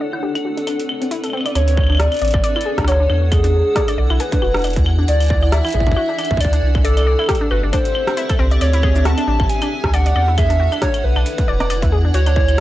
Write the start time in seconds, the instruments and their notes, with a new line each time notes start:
Already playing: ambient pad C4 D4 A4 D5 F#5
0.01 synth arpeggio sound D5
0.12 synth arpeggio sound E4, ambient pad B4, claves
0.23 synth arpeggio sound G4
0.35 synth arpeggio sound D4, closed hi-hat, claves
0.45 synth arpeggio sound F#4
0.57 synth arpeggio sound D4, ambient pad E5, closed hi-hat
0.67 synth arpeggio sound D4, closed hi-hat, claves
0.80 closed hi-hat
0.89 claves
1.02 synth arpeggio sound C4, closed hi-hat
1.11 synth arpeggio sound E4, closed hi-hat
1.24 synth arpeggio sound A4, closed hi-hat, claves
1.26 claves
1.30 synth arpeggio sound C4, claves
1.33 claves
1.37 claves
1.41 claves
1.46 synth arpeggio sound D5, closed hi-hat, claves
1.55 sub bass D2, synth arpeggio sound D4, ambient pad D4, soft synth lead C#5, closed hi-hat, claves
1.68 closed hi-hat
1.77 kick, claves
1.80 ambient pad F#5, claves
1.84 claves
1.87 ambient pad A4, claves
1.90 synth arpeggio sound D4, claves
1.92 claves
1.95 claves
1.97 soft synth lead D5, cross-stick, closed hi-hat, claves
2.12 closed hi-hat, claves
2.14 closed hi-hat
2.17 closed hi-hat
2.19 sub bass A1, closed hi-hat
2.22 synth arpeggio sound D5, closed hi-hat
2.25 closed hi-hat
2.28 closed hi-hat
2.31 sub bass A1, synth arpeggio sound D5, kick, closed hi-hat, claves
2.44 soft synth lead D5, synth arpeggio sound D5, closed hi-hat
2.56 synth arpeggio sound E4, claves
2.61 closed hi-hat
2.66 synth arpeggio sound G#4
2.78 sub bass D2, synth arpeggio sound D4, kick, cross-stick, closed hi-hat
2.84 synth arpeggio sound F#4, soft synth lead C#5, cross-stick, closed hi-hat, claves
2.92 cross-stick
3.00 synth arpeggio sound D4
3.10 sub bass E2, synth arpeggio sound D4, claves
3.32 ambient pad E4, soft synth lead G#4, kick, closed hi-hat, claves
3.44 synth arpeggio sound D4, closed hi-hat
3.76 synth arpeggio sound D5, kick, cross-stick, closed hi-hat
3.86 ambient pad D5, synth arpeggio sound D5, closed hi-hat, claves
3.97 sub bass B1, soft synth lead A4, synth arpeggio sound D5, ambient pad G#5
4.10 sub bass B1, synth arpeggio sound E4, claves
4.20 synth arpeggio sound G#4, soft synth lead B4, closed hi-hat
4.32 synth arpeggio sound D4, kick, closed hi-hat
4.42 sub bass E1, synth arpeggio sound F#4, claves
4.54 synth arpeggio sound D4, cross-stick, closed hi-hat
4.57 closed hi-hat
4.59 closed hi-hat
4.62 closed hi-hat
4.64 synth arpeggio sound D4, closed hi-hat, claves
4.67 closed hi-hat
4.70 closed hi-hat
4.73 kick, closed hi-hat
4.76 sub bass E2, closed hi-hat
4.86 claves
4.99 synth arpeggio sound D4
5.08 sub bass D2, ambient pad D4, soft synth lead D5, closed hi-hat
5.20 closed hi-hat, claves
5.22 closed hi-hat
5.24 closed hi-hat
5.26 closed hi-hat
5.28 synth arpeggio sound D5, kick, closed hi-hat
5.43 synth arpeggio sound D5, claves
5.52 synth arpeggio sound D5, soft synth lead E5, cross-stick, closed hi-hat
5.65 synth arpeggio sound E4, ambient pad A4, closed hi-hat, claves
5.67 closed hi-hat
5.69 closed hi-hat
5.70 closed hi-hat
5.73 sub bass A1, synth arpeggio sound G#4, kick, closed hi-hat
5.80 kick
5.87 sub bass A1, synth arpeggio sound D4, kick
5.92 kick
5.96 synth arpeggio sound F#4, soft synth lead E5, claves
6.09 synth arpeggio sound D4
6.18 synth arpeggio sound D4, closed hi-hat, claves
6.21 claves
6.24 closed hi-hat, claves
6.26 claves
6.28 sub bass D2, kick, claves
6.37 soft synth lead D5, kick, closed hi-hat, claves
6.45 kick
6.53 synth arpeggio sound D4, closed hi-hat
6.63 sub bass C2
6.75 kick, claves
6.84 ambient pad C4, soft synth lead A4, synth arpeggio sound D5, closed hi-hat
6.97 synth arpeggio sound D5, closed hi-hat, claves
6.99 claves
7.01 claves
7.03 ambient pad G4, claves
7.05 synth arpeggio sound D5, claves
7.14 ambient pad E5
7.19 synth arpeggio sound E4, ambient pad D5, claves
7.22 claves
7.24 claves
7.29 synth arpeggio sound G4, kick, cross-stick, closed hi-hat, claves
7.35 closed hi-hat, claves
7.41 synth arpeggio sound D4
7.51 sub bass G1, synth arpeggio sound F#4, soft synth lead B4, claves
7.63 sub bass G1, synth arpeggio sound D4
7.73 synth arpeggio sound D4, soft synth lead C5, kick, closed hi-hat, claves
7.85 closed hi-hat
7.95 claves
8.07 synth arpeggio sound C4, cross-stick, closed hi-hat
8.17 synth arpeggio sound E4, closed hi-hat
8.29 synth arpeggio sound A4, kick, closed hi-hat, claves
8.31 claves
8.33 claves
8.37 sub bass C2, synth arpeggio sound C4, claves
8.51 synth arpeggio sound D5, closed hi-hat
8.61 sub bass D2, ambient pad D4, soft synth lead C#5, synth arpeggio sound D5, closed hi-hat, claves
8.73 synth arpeggio sound E4, closed hi-hat
8.83 synth arpeggio sound G#4, kick, claves
8.96 synth arpeggio sound D4, ambient pad F#5, shaker
9.05 synth arpeggio sound F#4, soft synth lead A5, cross-stick, closed hi-hat
9.18 synth arpeggio sound D4, closed hi-hat, claves
9.23 ambient pad A4
9.27 sub bass A1, synth arpeggio sound D4
9.40 sub bass A1, kick, claves
9.49 soft synth lead G#5, closed hi-hat
9.62 synth arpeggio sound D4, closed hi-hat, claves, shaker
9.84 sub bass D2, kick, cross-stick
9.94 synth arpeggio sound D5, soft synth lead F#5, closed hi-hat, claves
10.06 synth arpeggio sound D5, closed hi-hat
10.16 sub bass E2, synth arpeggio sound D5, claves
10.28 synth arpeggio sound E4
10.38 ambient pad E4, synth arpeggio sound G#4, soft synth lead E5, kick, closed hi-hat, claves
10.50 synth arpeggio sound D4, closed hi-hat
10.58 synth arpeggio sound F#4, ambient pad D5
10.72 synth arpeggio sound D4, claves, shaker
10.74 claves
10.76 claves
10.78 synth arpeggio sound D4, soft synth lead C#5, kick, cross-stick, closed hi-hat, claves
10.94 closed hi-hat, claves
11.04 sub bass B1, soft synth lead B4
11.16 sub bass B1, synth arpeggio sound D4, ambient pad G#5, claves
11.26 closed hi-hat, shaker
11.38 kick, closed hi-hat
11.48 sub bass E1, synth arpeggio sound D5
11.60 synth arpeggio sound D5, cross-stick, closed hi-hat
11.70 synth arpeggio sound D5, closed hi-hat, claves
11.82 sub bass E2, synth arpeggio sound E4, kick, closed hi-hat
11.92 synth arpeggio sound G#4
12.05 synth arpeggio sound D4
12.14 sub bass D2, ambient pad D4, synth arpeggio sound F#4, soft synth lead C#5, closed hi-hat
12.26 synth arpeggio sound D4, closed hi-hat, claves
12.36 synth arpeggio sound D4, kick
12.49 claves, shaker